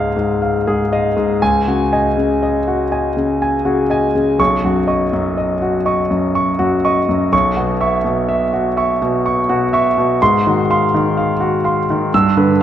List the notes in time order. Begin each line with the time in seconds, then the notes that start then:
Already playing: C#2 G#2 G#4 D#5 F5
0.16 G#2
0.42 F5
0.67 G#2 G#4
0.93 D#5 F5
1.17 G#2
1.42 C#2 G#5
1.68 C#3 F#4
1.93 D#5 G#5
2.17 C#3
2.43 D#5
2.68 F#4
2.91 D#5 G#5
3.17 C#3
3.42 G#5
3.65 C#3 F#4
3.90 D#5 G#5
4.15 C#3
4.39 B1 C#6
4.64 F#2 F#4
4.87 D#5 C#6
5.13 F#2
5.38 D#5
5.62 F#4
5.86 D#5 C#6
6.11 F#2
6.35 C#6
6.59 F#2 F#4
6.85 D#5 C#6
7.09 F#2
7.32 B1 C#6
7.56 B2 F#4
7.81 E5 C#6
8.04 B2
8.29 E5
8.53 F#4
8.77 E5 C#6
9.02 B2
9.26 C#6
9.49 B2 F#4
9.73 E5 C#6
9.98 B2
10.22 G#2 C6
10.47 D#3 F#4
10.70 F5 C6
10.94 D#3
11.17 F5
11.40 F#4
11.64 F5 C6
11.90 D#3
12.14 G2 E6
12.37 D3 B4